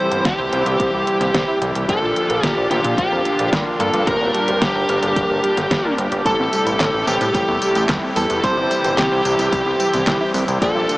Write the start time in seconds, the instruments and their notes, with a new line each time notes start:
Already playing: electric grand piano C3 C4 E4 G4 C5, analog synth pad C3 E3 G3 E4 G4, lead electric guitar C5, synth bell C6
0.11 analog synth bass G1, synth arpeggio sound G4, closed hi-hat
0.25 analog synth bass C2, synth arpeggio sound G3, lead electric guitar G4, synth bell G5, kick, snare, closed hi-hat
0.39 analog synth bass C2, synth arpeggio sound C5
0.52 analog synth bass C2, electric grand piano C3 C4 E4 G4 C5, synth arpeggio sound G3, closed hi-hat
0.66 analog synth bass C2, synth arpeggio sound E4, closed hi-hat
0.80 analog synth bass C2, synth arpeggio sound G3, kick, closed hi-hat
0.93 analog synth bass C2, synth arpeggio sound G4
1.07 synth arpeggio sound G3, closed hi-hat
1.21 analog synth bass C2, synth arpeggio sound C5, snare, closed hi-hat
1.34 analog synth bass C2, electric grand piano C3 C4 E4 G4 C5, synth arpeggio sound G3, kick, snare, closed hi-hat
1.48 synth arpeggio sound E4
1.61 analog synth bass C2, synth arpeggio sound G3, closed hi-hat
1.75 analog synth bass C2, synth arpeggio sound G4, closed hi-hat
1.89 analog synth bass A#1, electric grand piano A#2 A#3 D4 F4 D5, analog synth pad A#2 D3 F3 D4 F4, synth arpeggio sound A#3, lead electric guitar A4, synth bell A5, kick, closed hi-hat
2.02 analog synth bass A#1, synth arpeggio sound F4
2.16 synth arpeggio sound A#3, closed hi-hat
2.30 analog synth bass A#1, synth arpeggio sound A#4, closed hi-hat
2.43 analog synth bass A#2, synth arpeggio sound A#3, lead electric guitar G4, synth bell G5, kick, snare, closed hi-hat
2.57 analog synth bass A#1, synth arpeggio sound D5
2.71 analog synth bass A#1, electric grand piano A#2 A#3 D4 F4 A#4, synth arpeggio sound A#3, lead electric guitar G4, synth bell G5, snare, closed hi-hat
2.84 analog synth bass A#2, synth arpeggio sound F4, closed hi-hat
2.98 analog synth bass A#1, synth arpeggio sound A#3, lead electric guitar G4, synth bell G5, kick, closed hi-hat
3.12 analog synth bass F2, synth arpeggio sound A#4
3.25 synth arpeggio sound A#3, closed hi-hat
3.39 analog synth bass A#1, synth arpeggio sound D5, closed hi-hat
3.52 analog synth bass G2, electric grand piano A#2 A#3 D4 F4 A#4, synth arpeggio sound A#3, kick, snare, closed hi-hat
3.66 synth arpeggio sound F4
3.80 analog synth bass G2, synth arpeggio sound A#3, lead electric guitar A4, synth bell A5, closed hi-hat
3.94 analog synth bass G2, synth arpeggio sound A#4, closed hi-hat
4.07 analog synth bass G1, electric grand piano G2 A#3 D4 G4 A#4, synth arpeggio sound G3, analog synth pad G3 G4, lead electric guitar A#4, synth bell A#5, kick, closed hi-hat
4.21 analog synth bass D1, synth arpeggio sound D4
4.34 synth arpeggio sound G3, closed hi-hat
4.48 analog synth bass D1, synth arpeggio sound G4, closed hi-hat
4.61 analog synth bass G1, synth arpeggio sound G3, lead electric guitar G4, synth bell G5, kick, snare, closed hi-hat
4.75 analog synth bass G1, synth arpeggio sound A#4
4.89 analog synth bass G1, electric grand piano G2 A#3 D4 G4 A#4, synth arpeggio sound G3, closed hi-hat
5.03 analog synth bass G1, synth arpeggio sound D4, closed hi-hat
5.16 analog synth bass G1, synth arpeggio sound G3, kick, closed hi-hat
5.30 analog synth bass G1, synth arpeggio sound G4
5.44 synth arpeggio sound G3, closed hi-hat
5.57 analog synth bass G1, synth arpeggio sound A#4, snare, closed hi-hat
5.71 analog synth bass G1, synth arpeggio sound G3, kick, snare, closed hi-hat
5.85 electric grand piano G2 A#3 D4 G4 A#4, synth arpeggio sound D4
5.98 analog synth bass G1, synth arpeggio sound G3, closed hi-hat
6.12 analog synth bass G1, synth arpeggio sound G4, closed hi-hat
6.25 analog synth bass A1, electric grand piano A2 C4 E4 G4 A4, analog synth pad C3 A3 E4, synth arpeggio sound G3, lead electric guitar A4, synth bell A5, kick, closed hi-hat, tambourine
6.39 analog synth bass A1, synth arpeggio sound C4
6.53 synth arpeggio sound G3, closed hi-hat, tambourine
6.66 analog synth bass A1, synth arpeggio sound E4, closed hi-hat, tambourine
6.80 analog synth bass A2, synth arpeggio sound G3, kick, snare, clap, closed hi-hat, tambourine
6.94 analog synth bass A1, synth arpeggio sound G4
7.07 analog synth bass A1, electric grand piano A2 C4 E4 G4 A4, synth arpeggio sound G3, lead electric guitar G4, synth bell G5, snare, closed hi-hat, tambourine
7.21 analog synth bass A2, synth arpeggio sound C4, closed hi-hat, tambourine
7.34 analog synth bass A1, synth arpeggio sound G3, lead electric guitar G4, synth bell G5, kick, closed hi-hat, tambourine
7.48 analog synth bass E2, synth arpeggio sound E4
7.62 synth arpeggio sound G3, closed hi-hat, tambourine
7.75 analog synth bass A1, synth arpeggio sound G4, closed hi-hat, tambourine
7.89 analog synth bass E2, electric grand piano A2 C4 E4 G4 A4, synth arpeggio sound G3, kick, snare, clap, closed hi-hat, tambourine
8.03 synth arpeggio sound C4
8.16 analog synth bass E2, synth arpeggio sound G3, lead electric guitar A4, synth bell A5, open hi-hat, tambourine
8.30 analog synth bass E2, synth arpeggio sound E4, closed hi-hat, tambourine
8.43 analog synth bass C2, electric grand piano C3 C4 E4 G4 C5, analog synth pad E3 G4, synth arpeggio sound G3, lead electric guitar C5, synth bell C6, kick, closed hi-hat, tambourine
8.57 analog synth bass G1, synth arpeggio sound E4
8.71 synth arpeggio sound G3, closed hi-hat, tambourine
8.84 analog synth bass G1, synth arpeggio sound G4, closed hi-hat, tambourine
8.98 analog synth bass C2, synth arpeggio sound G3, lead electric guitar G4, synth bell G5, kick, snare, clap, closed hi-hat, tambourine
9.12 analog synth bass C2, synth arpeggio sound C5
9.25 analog synth bass C2, electric grand piano C3 C4 E4 G4 C5, synth arpeggio sound G3, closed hi-hat, tambourine
9.39 analog synth bass C2, synth arpeggio sound E4, closed hi-hat, tambourine
9.52 analog synth bass C2, synth arpeggio sound G3, kick, closed hi-hat, tambourine
9.66 analog synth bass C2, synth arpeggio sound G4
9.80 synth arpeggio sound G3, closed hi-hat, tambourine
9.94 analog synth bass C2, synth arpeggio sound C5, snare, closed hi-hat, tambourine
10.07 analog synth bass C2, electric grand piano C3 C4 E4 G4 C5, synth arpeggio sound G3, kick, snare, clap, closed hi-hat, tambourine
10.21 synth arpeggio sound E4
10.34 analog synth bass C2, synth arpeggio sound G3, open hi-hat, tambourine
10.48 analog synth bass C2, synth arpeggio sound G4, closed hi-hat, tambourine
10.62 analog synth bass A#1, electric grand piano A#2 A#3 D4 F4 D5, analog synth pad A#2 D3 F3 D4 F4, synth arpeggio sound A#3, lead electric guitar A4, synth bell A5, kick, closed hi-hat, tambourine
10.75 analog synth bass A#1, synth arpeggio sound F4
10.89 synth arpeggio sound A#3, closed hi-hat, tambourine